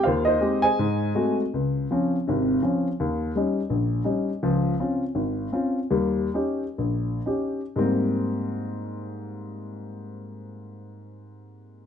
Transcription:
0.04 0.37 D#2 medium
0.04 0.26 F4 medium
0.04 0.26 C5 medium
0.04 0.26 F5 medium
0.25 0.61 D#4 medium
0.25 0.61 C5 medium
0.25 0.60 D#5 medium
0.41 0.65 G#3 medium
0.41 0.65 C4 soft
0.41 0.66 G4 medium
0.62 1.35 G#4 medium
0.62 1.35 C5 medium
0.62 1.35 D#5 medium
0.62 1.34 G#5 loud
0.79 1.11 G#2 medium
1.15 1.41 G#3 soft
1.15 1.41 A3 soft
1.15 1.41 C4 soft
1.15 1.41 F#4 medium
1.54 1.85 C#2 medium
1.91 2.15 F3 medium
1.91 2.15 C4 soft
1.91 2.16 C#4 medium
2.27 2.59 G#1 medium
2.27 2.58 C3 medium
2.63 2.87 F3 soft
2.63 2.87 C4 soft
2.63 2.87 C#4 medium
3.00 3.30 D#2 medium
3.35 3.59 G3 soft
3.35 3.59 C#4 soft
3.35 3.60 D#4 medium
3.70 4.00 A#1 medium
4.04 4.29 G3 soft
4.04 4.29 C#4 soft
4.04 4.29 D#4 soft
4.43 4.73 C#2 medium
4.43 4.73 F3 medium
4.80 5.02 C4 soft
4.80 5.03 C#4 soft
4.80 5.03 F4 soft
5.15 5.46 G#1 medium
5.52 5.78 C4 soft
5.52 5.78 C#4 soft
5.52 5.78 F4 medium
5.91 6.26 D#2 medium
5.91 6.26 G3 medium
6.34 6.63 C#4 soft
6.34 6.63 D#4 soft
6.34 6.63 G4 medium
6.78 7.19 A#1 medium
7.26 7.60 C#4 soft
7.26 7.60 D#4 soft
7.26 7.61 G4 medium
7.76 11.86 G#2 medium
7.76 11.86 G3 soft
7.76 11.86 A#3 medium
7.76 11.86 C4 medium

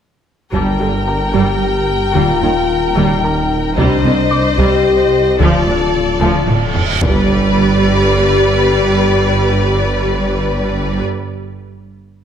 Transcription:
0.53 0.61 G1 soft
0.53 2.17 G1 medium
0.53 0.61 G2 soft
0.53 0.69 G3 medium
0.53 0.78 G3 soft
0.53 1.30 D4 medium
0.53 2.12 G4 soft
0.53 3.74 A#4 soft
0.53 3.74 G5 soft
0.53 2.12 A5 soft
0.53 taiko soft
0.80 0.88 G1 soft
0.80 0.88 G2 soft
0.80 0.89 D3 soft
0.80 0.97 G4 soft
1.08 2.66 A#4 soft
1.08 2.66 A#5 soft
1.34 1.42 G1 soft
1.34 1.42 G2 medium
1.34 1.51 G3 medium
1.34 1.60 G3 soft
1.34 2.15 G4 medium
2.14 3.79 D#1 medium
2.14 2.23 D#2 medium
2.14 2.23 D#2 soft
2.14 2.31 D#3 medium
2.14 2.41 G3 medium
2.14 2.94 F4 medium
2.42 2.50 D#2 soft
2.42 2.51 D#3 soft
2.42 2.59 D#4 soft
2.96 3.04 D#2 medium
2.96 3.05 D#2 medium
2.96 3.13 D#3 medium
2.96 3.22 G3 medium
2.96 3.77 D#4 medium
3.24 4.82 A#4 soft
3.24 4.82 A#5 soft
3.77 3.85 C2 medium
3.77 5.41 C2 medium
3.77 3.94 C3 medium
3.77 4.03 G3 medium
3.77 4.57 D4 medium
3.77 5.37 C5 medium
3.77 5.37 D#5 medium
3.77 taiko medium
4.04 4.12 C2 soft
4.04 4.13 C2 medium
4.04 4.14 D3 soft
4.04 4.21 C4 medium
4.31 5.89 D6 medium
4.58 4.66 C2 medium
4.58 4.67 C2 medium
4.58 4.75 C3 medium
4.58 4.84 G3 medium
4.58 5.38 G4 loud
4.58 taiko medium
5.39 7.02 D1 medium
5.39 5.48 D2 medium
5.39 5.56 D3 medium
5.39 5.66 F3 medium
5.39 6.75 F4 medium
5.39 6.79 A4 soft
5.39 6.80 D5 medium
5.39 taiko medium
5.39 reverse cymbal medium
5.67 5.75 D2 soft
5.67 5.76 D3 soft
5.67 5.83 D4 medium
5.67 taiko mid soft
5.94 taiko mid medium
6.21 6.29 D2 medium
6.21 6.30 D2 medium
6.21 6.37 D3 medium
6.21 6.47 F3 medium
6.21 6.98 A5 soft
6.21 taiko mid medium
6.48 taiko low-mid medium
6.75 taiko low medium
7.02 11.03 G1 medium
7.02 11.02 G2 medium
7.02 11.03 G3 medium
7.02 11.03 G4 medium
7.02 11.03 B4 medium
7.02 11.02 D5 medium
7.02 taiko loud
7.02 impact medium

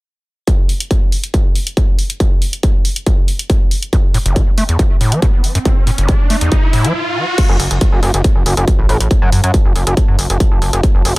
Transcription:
0.47 kick loud
0.47 closed hi-hat medium
0.69 open hi-hat loud
0.80 closed hi-hat medium
0.91 kick loud
0.91 closed hi-hat medium
1.12 open hi-hat medium
1.24 closed hi-hat medium
1.34 kick loud
1.34 closed hi-hat medium
1.55 open hi-hat loud
1.67 closed hi-hat medium
1.77 kick loud
1.77 closed hi-hat medium
1.99 open hi-hat medium
2.10 closed hi-hat medium
2.20 kick loud
2.20 closed hi-hat medium
2.42 open hi-hat loud
2.53 closed hi-hat medium
2.63 kick loud
2.63 closed hi-hat medium
2.85 open hi-hat loud
2.96 closed hi-hat medium
3.06 kick loud
3.06 closed hi-hat medium
3.28 open hi-hat loud
3.39 closed hi-hat medium
3.50 kick loud
3.50 closed hi-hat medium
3.71 open hi-hat medium
3.83 closed hi-hat medium
3.93 3.97 F#2 medium
3.93 kick loud
3.93 closed hi-hat medium
3.93 riser medium
4.14 4.18 A2 medium
4.14 open hi-hat loud
4.26 4.38 F#1 loud
4.26 closed hi-hat medium
4.36 4.42 F#3 loud
4.36 kick loud
4.36 closed hi-hat medium
4.58 4.64 A3 medium
4.58 open hi-hat loud
4.69 4.77 E2 medium
4.69 closed hi-hat medium
4.79 4.83 F#2 medium
4.79 kick loud
4.79 closed hi-hat medium
5.01 5.14 A2 medium
5.01 open hi-hat loud
5.12 5.21 F#3 medium
5.12 closed hi-hat medium
5.22 5.26 B2 medium
5.22 kick loud
5.22 closed hi-hat medium
5.44 open hi-hat medium
5.55 5.59 F#2 medium
5.55 closed hi-hat medium
5.65 5.69 F#2 medium
5.65 kick loud
5.65 closed hi-hat medium
5.87 5.91 A2 medium
5.87 open hi-hat loud
5.98 6.10 F#1 loud
5.98 closed hi-hat medium
6.09 6.15 F#3 medium
6.09 kick loud
6.09 closed hi-hat medium
6.30 6.36 A3 medium
6.30 open hi-hat loud
6.41 6.50 E2 medium
6.41 closed hi-hat medium
6.52 kick loud
6.52 closed hi-hat medium
6.73 6.86 A2 medium
6.73 open hi-hat loud
6.84 6.93 F#3 medium
6.84 closed hi-hat medium
7.38 11.19 F#4 medium
7.38 kick loud
7.38 closed hi-hat medium
7.38 crash medium
7.49 7.57 F#1 medium
7.60 7.68 F#1 loud
7.60 open hi-hat loud
7.71 7.79 F#1 medium
7.71 closed hi-hat medium
7.81 kick loud
7.81 closed hi-hat medium
7.92 8.00 F#1 medium
7.97 11.19 C#5 medium
8.03 8.11 F#1 loud
8.03 open hi-hat loud
8.14 8.22 F#1 medium
8.14 closed hi-hat medium
8.24 kick loud
8.24 closed hi-hat medium
8.36 8.43 F#1 medium
8.46 8.54 F#1 loud
8.46 open hi-hat loud
8.57 8.65 F#1 medium
8.57 closed hi-hat medium
8.68 kick loud
8.68 closed hi-hat medium
8.79 8.87 A1 loud
8.83 11.19 A5 medium
8.89 8.97 A1 loud
8.89 open hi-hat medium
9.00 9.08 A1 medium
9.00 closed hi-hat medium
9.11 kick loud
9.11 closed hi-hat medium
9.22 9.30 F#2 medium
9.32 9.41 F#2 loud
9.32 open hi-hat loud
9.44 9.51 F#2 medium
9.44 closed hi-hat medium
9.54 kick loud
9.54 closed hi-hat medium
9.65 9.73 F#1 medium
9.76 9.84 F#1 loud
9.76 open hi-hat loud
9.87 9.94 F#1 medium
9.87 closed hi-hat medium
9.97 kick loud
9.97 closed hi-hat medium
10.08 10.16 F#2 medium
10.19 10.27 F#1 loud
10.19 open hi-hat loud
10.30 10.38 F#1 medium
10.30 closed hi-hat medium
10.40 kick loud
10.40 closed hi-hat medium
10.52 10.59 F#1 medium
10.62 10.70 F#1 loud
10.62 open hi-hat medium
10.73 10.81 F#1 loud
10.73 closed hi-hat medium
10.83 kick loud
10.83 closed hi-hat medium
10.95 11.02 F#1 medium
11.05 11.13 F#1 loud
11.05 open hi-hat loud

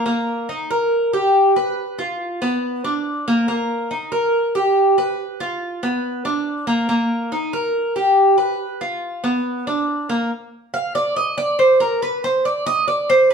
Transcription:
0.06 0.47 A#3 medium
0.49 0.69 D#4 medium
0.70 1.11 A#4 medium
1.13 1.54 G4 medium
1.56 1.97 B4 medium
1.99 2.39 F4 medium
2.42 2.82 B3 medium
2.84 3.25 D4 medium
3.28 3.47 A#3 medium
3.48 3.89 A#3 medium
3.91 4.11 D#4 medium
4.12 4.53 A#4 medium
4.55 4.96 G4 medium
4.98 5.39 B4 medium
5.40 5.81 F4 medium
5.83 6.24 B3 medium
6.25 6.66 D4 medium
6.67 6.88 A#3 medium
6.89 7.30 A#3 medium
7.32 7.52 D#4 medium
7.53 7.94 A#4 medium
7.96 8.37 G4 medium
8.38 8.79 B4 medium
8.81 9.22 F4 medium
9.24 9.65 B3 medium
9.67 10.08 D4 medium
10.09 10.30 A#3 medium
10.74 10.94 F5 medium
10.95 11.15 D5 medium
11.16 11.37 D#5 medium
11.38 11.58 D5 loud
11.59 11.80 C5 medium
11.80 12.01 A#4 medium
12.02 12.23 B4 medium
12.24 12.44 C5 medium
12.45 12.65 D5 medium
12.66 12.87 D#5 loud
12.88 13.08 D5 medium
13.10 13.30 C5 loud
13.30 13.34 B4 medium

